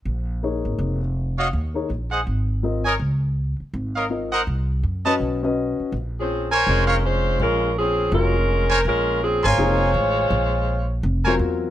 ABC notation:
X:1
M:4/4
L:1/8
Q:"Swing" 1/4=164
K:Bbm
V:1 name="Trumpet section"
z6 z [Gdef] | z3 [Aceg] z3 [Bdea] | z4 z [Bdef] z [Bceg] | z3 [_cde=a] z4 |
z3 [Bcda]2 [Bcdf] z2 | z6 z [Bcda] | z3 [DBac']3 z2 | z4 z [Bcda] z2 |]
V:2 name="Grand piano"
z2 [B,EAd]3 z3 | z [B,EAd] z4 [CFBe] z | z6 [CFBe] z | z3 [DG_ce]2 [^C^F=B^d]3 |
z8 | z4 [G,CFB] z3 | z4 [F,B,EA] z3 | z4 z [G,CFB]3 |]
V:3 name="Saxophone section"
z8 | z8 | z8 | z8 |
z [F,CDA]2 z [A,DFB]2 [A,DFc]2 | [A,DFB]2 [F,CDA]2 [A,DFB]4 | [A,DFB]2 [F,CDA] [A,Fcd]4- [A,Fcd]- | [A,Fcd]3 z4 z |]
V:4 name="Upright bass" clef=bass
B,,,3 A,,, F,,,4 | E,,2 B,,,2 A,,,4 | D,,3 z A,,,4 | C,,2 G,,2 =B,,,3 z |
B,,,4 F,,,4 | B,,,4 F,,,4 | B,,,3 A,,, F,,,2 =A,,,2 | B,,,4 F,,,2 =E,,2 |]